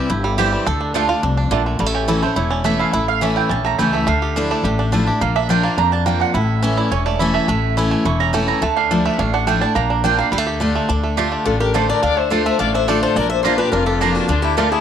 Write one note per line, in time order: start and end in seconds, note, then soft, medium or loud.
0.00 0.35 G4 medium
0.10 0.54 G1 loud
0.10 0.64 G2 loud
0.10 0.50 E4 medium
0.24 0.51 G3 medium
0.38 0.65 E3 loud
0.38 0.65 G3 medium
0.38 0.47 C4 medium
0.38 0.66 C4 medium
0.38 0.47 E4 loud
0.38 0.66 E4 loud
0.38 0.66 G4 medium
0.38 0.48 C5 loud
0.38 0.48 G5 loud
0.53 0.66 G3 medium
0.67 1.11 D2 medium
0.67 0.93 D3 loud
0.67 0.94 A4 loud
0.81 0.93 D4 medium
0.94 1.22 D3 medium
0.94 1.04 A3 medium
0.94 1.22 A3 medium
0.94 1.22 D4 medium
0.94 1.22 D4 loud
0.94 1.04 F4 loud
0.94 1.22 F4 loud
0.94 1.04 D5 loud
0.94 1.05 A5 loud
1.09 1.23 F4 medium
1.23 1.47 C2 medium
1.23 1.50 F2 medium
1.23 1.36 D4 medium
1.37 1.77 D4 medium
1.51 1.75 A#1 medium
1.51 1.78 A#2 loud
1.51 1.80 D3 medium
1.51 1.61 A3 loud
1.51 1.61 F4 medium
1.51 1.61 D5 loud
1.51 1.61 A5 loud
1.66 1.80 A3 medium
1.79 2.24 A1 medium
1.79 2.34 A2 medium
1.79 1.86 G3 medium
1.86 2.09 A3 medium
1.94 2.34 C#4 medium
1.94 2.08 G4 medium
2.08 2.22 E3 medium
2.08 2.22 A3 loud
2.08 2.23 C#4 medium
2.08 2.36 E4 medium
2.08 2.21 E4 loud
2.08 2.23 A4 medium
2.22 2.64 A3 medium
2.22 2.37 C#4 medium
2.22 2.36 E4 medium
2.22 2.37 C5 medium
2.36 2.81 E1 medium
2.36 2.91 E2 medium
2.36 2.79 E4 medium
2.36 2.51 C#5 medium
2.50 2.91 C#4 medium
2.50 2.65 D5 medium
2.64 2.92 E3 medium
2.64 3.64 A3 medium
2.64 2.92 A3 medium
2.64 2.92 C#4 medium
2.64 2.93 E4 loud
2.64 2.80 E5 medium
2.79 2.93 E4 medium
2.79 2.93 F5 loud
2.93 3.38 A1 medium
2.93 3.48 A2 medium
2.93 3.34 E4 medium
2.93 3.08 E5 medium
3.08 3.22 F5 loud
3.21 3.49 E3 loud
3.21 3.49 A3 medium
3.21 3.48 C#4 medium
3.21 3.50 C#4 loud
3.21 3.50 E4 medium
3.21 3.36 E5 medium
3.36 3.76 E4 medium
3.36 3.50 G5 medium
3.49 3.74 A#1 medium
3.49 4.05 E2 medium
3.49 3.90 C#4 medium
3.49 3.65 A5 medium
3.65 3.92 A3 medium
3.65 3.78 A#5 loud
3.79 4.03 C#2 medium
3.79 4.06 E3 medium
3.79 4.06 A3 medium
3.79 4.07 C#4 loud
3.79 4.07 E4 medium
3.79 3.93 G5 medium
3.93 4.06 A3 medium
3.93 4.07 E5 medium
4.07 4.52 D2 medium
4.07 4.62 D3 loud
4.07 4.47 A3 medium
4.07 4.48 F5 medium
4.22 4.62 G4 medium
4.36 4.63 F3 medium
4.36 4.63 A3 medium
4.36 4.76 D4 medium
4.36 4.64 D4 medium
4.36 4.64 E4 loud
4.51 4.90 A3 medium
4.51 4.90 D5 medium
4.63 5.08 A1 loud
4.63 5.19 A2 medium
4.63 5.05 G4 medium
4.79 4.91 D4 medium
4.92 5.06 F3 medium
4.92 5.07 A3 medium
4.92 5.21 D4 medium
4.92 5.07 D4 medium
4.92 5.05 E4 medium
5.06 5.21 D4 medium
5.06 5.20 E4 medium
5.06 5.21 G4 medium
5.21 5.66 A#1 loud
5.21 5.75 A#2 loud
5.21 5.61 A#3 medium
5.21 5.35 F5 medium
5.36 5.49 D4 medium
5.36 5.49 E5 loud
5.49 5.76 F3 medium
5.49 5.77 A#3 medium
5.49 5.76 D4 medium
5.49 5.77 D4 loud
5.49 5.77 F4 loud
5.49 5.64 G5 loud
5.63 6.03 A#3 medium
5.63 5.78 A5 medium
5.78 6.22 F2 medium
5.78 6.32 F2 medium
5.78 5.91 D4 medium
5.78 5.92 A#5 loud
5.92 6.19 D4 medium
5.92 6.06 A5 loud
6.06 6.33 F3 medium
6.06 6.35 A#3 medium
6.06 6.34 A#3 medium
6.06 6.34 D4 medium
6.06 6.34 F4 medium
6.06 6.21 G5 loud
6.20 6.34 D4 medium
6.20 6.35 F#5 loud
6.34 6.79 A1 medium
6.34 6.89 A2 medium
6.34 6.77 E4 medium
6.34 6.75 E5 medium
6.62 6.90 E3 medium
6.62 6.90 A3 medium
6.62 6.90 C#4 medium
6.62 6.91 C#4 loud
6.62 6.91 E4 loud
6.77 7.19 E4 medium
6.77 6.91 D5 medium
6.91 7.36 E1 loud
6.91 7.46 E2 medium
6.91 7.32 C#4 medium
6.91 7.05 C#5 medium
7.06 7.33 A3 medium
7.06 7.20 D5 loud
7.19 7.47 E3 medium
7.19 7.48 A3 medium
7.19 7.48 C#4 loud
7.19 7.77 E4 medium
7.19 7.48 E4 loud
7.19 7.33 E5 medium
7.34 7.48 A3 medium
7.34 7.74 E5 loud
7.48 7.93 A1 loud
7.48 8.03 A2 loud
7.48 7.89 A3 medium
7.77 8.04 E3 medium
7.77 8.04 A3 medium
7.77 8.05 C#4 loud
7.77 8.05 E4 medium
7.77 8.05 E4 loud
7.91 8.31 A3 medium
8.05 8.50 E1 loud
8.05 8.60 E2 medium
8.05 8.46 E4 medium
8.05 8.20 C#6 loud
8.20 8.60 C#4 medium
8.20 8.33 A#5 loud
8.33 8.60 E3 medium
8.33 8.61 A3 medium
8.33 8.61 C#4 medium
8.33 8.61 E4 medium
8.33 8.47 G5 medium
8.48 8.62 E4 medium
8.48 8.62 A#5 loud
8.62 9.06 D2 loud
8.62 9.16 D3 loud
8.62 9.02 A3 medium
8.62 8.76 A5 loud
8.76 8.91 D4 medium
8.76 8.90 F5 loud
8.91 9.18 F3 medium
8.91 9.18 A3 medium
8.91 9.19 D4 medium
8.91 9.18 D4 medium
8.91 9.19 E4 medium
8.91 9.05 D5 medium
9.05 9.45 A3 medium
9.05 9.19 E5 medium
9.19 9.63 A1 loud
9.19 9.73 A2 loud
9.19 9.34 D4 medium
9.19 9.33 F5 medium
9.34 9.61 D4 medium
9.34 9.47 F#5 loud
9.47 9.61 F3 medium
9.47 9.75 A3 medium
9.47 9.62 A3 medium
9.47 9.62 D4 loud
9.47 9.61 E4 loud
9.47 9.61 G5 loud
9.61 9.90 D4 medium
9.61 9.76 D4 medium
9.61 9.75 E4 medium
9.61 9.75 A5 loud
9.75 10.20 A#1 medium
9.75 10.30 A#2 loud
9.75 10.16 A#3 medium
9.75 10.02 A#5 loud
9.90 10.03 D4 medium
10.04 10.18 F3 loud
10.04 10.18 A#3 medium
10.04 10.32 D4 medium
10.04 10.19 D4 loud
10.04 10.17 F4 loud
10.04 10.18 G5 loud
10.18 10.31 A#3 medium
10.18 10.33 D4 medium
10.18 10.32 F4 medium
10.18 10.58 F5 loud
10.32 10.77 D2 loud
10.32 10.59 D3 medium
10.32 10.38 G3 medium
10.38 10.61 A3 medium
10.47 10.86 G4 medium
10.60 10.88 D3 medium
10.60 10.88 A3 medium
10.60 10.88 D4 medium
10.60 10.89 F4 loud
10.75 10.89 A3 medium
10.89 11.34 D2 medium
10.89 11.16 D3 medium
10.89 11.31 D4 medium
11.04 11.43 A3 medium
11.17 11.45 D3 medium
11.17 11.27 A3 medium
11.17 11.45 A3 medium
11.17 11.45 D4 loud
11.17 11.27 F4 loud
11.17 11.45 F4 medium
11.17 11.58 G4 medium
11.17 11.27 D5 loud
11.17 11.27 A5 loud
11.32 11.45 D4 medium
11.45 11.90 A1 medium
11.45 12.00 A2 medium
11.45 11.75 D4 medium
11.45 11.59 F4 medium
11.45 11.60 A4 medium
11.60 11.73 G4 medium
11.60 12.00 G4 medium
11.60 11.74 A#4 medium
11.74 12.01 D3 medium
11.74 12.01 A3 medium
11.74 11.84 A3 medium
11.74 11.89 D4 medium
11.74 12.02 D4 loud
11.74 11.84 F4 loud
11.74 12.02 F4 medium
11.74 11.88 A4 medium
11.74 11.89 C5 medium
11.74 11.84 D5 loud
11.74 11.84 A5 medium
11.89 12.02 D4 medium
11.89 12.02 A#4 medium
11.89 12.03 D5 loud
12.02 12.47 D2 medium
12.02 12.29 D3 medium
12.02 12.31 D4 medium
12.02 12.20 D5 medium
12.02 12.18 F5 medium
12.17 12.45 A3 medium
12.17 12.32 C5 medium
12.17 12.31 E5 loud
12.30 12.58 D3 medium
12.30 12.41 A3 medium
12.30 12.58 A3 medium
12.30 12.60 D4 medium
12.30 12.59 D4 medium
12.30 12.40 F4 loud
12.30 12.59 F4 medium
12.30 12.45 A4 medium
12.30 12.45 C5 medium
12.30 12.41 D5 loud
12.30 12.41 A5 loud
12.46 12.85 A3 medium
12.46 12.59 C5 medium
12.46 12.59 E5 loud
12.59 13.04 A1 medium
12.59 13.13 A2 medium
12.59 12.74 D4 medium
12.59 12.73 D5 medium
12.59 12.74 F5 medium
12.74 13.03 D4 medium
12.74 12.90 C5 medium
12.74 12.88 E5 loud
12.88 13.15 D3 medium
12.88 12.97 A3 medium
12.88 13.17 A3 medium
12.88 13.15 A3 medium
12.88 13.16 D4 medium
12.88 12.97 F4 loud
12.88 13.16 F4 medium
12.88 13.02 A4 medium
12.88 13.02 D5 medium
12.88 12.98 D5 medium
12.88 12.98 A5 loud
13.02 13.16 D4 medium
13.02 13.19 A4 medium
13.02 13.16 C5 loud
13.16 13.60 A#1 loud
13.16 13.70 A#2 medium
13.16 13.59 D4 medium
13.16 13.32 A#4 medium
13.16 13.29 D5 medium
13.30 13.44 C5 medium
13.30 13.42 E5 loud
13.43 13.59 F3 medium
13.43 13.54 A#3 loud
13.43 13.59 A#3 loud
13.43 13.59 D4 medium
13.43 13.54 F4 loud
13.43 13.57 F4 loud
13.43 13.85 G4 medium
13.43 13.58 C5 medium
13.43 13.54 D5 loud
13.43 13.54 A#5 loud
13.47 13.59 F4 medium
13.58 13.72 D4 medium
13.58 13.73 D4 soft
13.58 13.72 F4 medium
13.58 13.73 G4 medium
13.58 13.71 B4 medium
13.72 14.17 F1 medium
13.72 14.27 F2 medium
13.72 14.01 D4 medium
13.72 13.88 F4 medium
13.72 13.86 A#4 medium
13.86 14.03 F4 medium
13.86 14.26 G4 medium
13.86 14.01 A4 medium
14.01 14.28 F3 medium
14.01 14.10 A#3 medium
14.01 14.28 A#3 medium
14.01 14.16 D4 medium
14.01 14.29 D4 medium
14.01 14.11 F4 medium
14.01 14.29 F4 medium
14.01 14.15 G4 medium
14.01 14.11 D5 loud
14.01 14.11 A#5 loud
14.15 14.30 D4 medium
14.15 14.29 D4 medium
14.15 14.29 F#4 medium
14.28 14.73 D2 medium
14.28 14.56 D3 medium
14.28 14.42 D4 medium
14.28 14.72 D4 medium
14.28 14.43 F4 medium
14.42 14.80 A3 medium
14.42 14.56 E4 medium
14.42 14.57 G4 medium
14.57 14.80 D3 medium
14.57 14.67 A3 medium
14.57 14.80 A3 medium
14.57 14.80 D4 loud
14.57 14.67 F4 loud
14.57 14.71 F4 medium
14.57 14.80 F4 medium
14.57 14.80 G4 medium
14.57 14.71 A#4 medium
14.57 14.67 D5 loud
14.57 14.67 A5 loud
14.71 14.80 D4 medium
14.71 14.80 E4 medium
14.71 14.80 G#4 medium